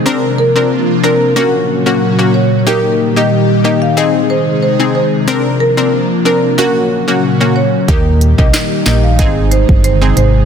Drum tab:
HH |----------------|----------------|----------------|x-x-x-x-x-x-x-x-|
CP |----------------|----------------|----------------|----x-x---------|
SD |----------------|----------------|----------------|----o-o---------|
BD |----------------|----------------|----------------|o--o----o--o----|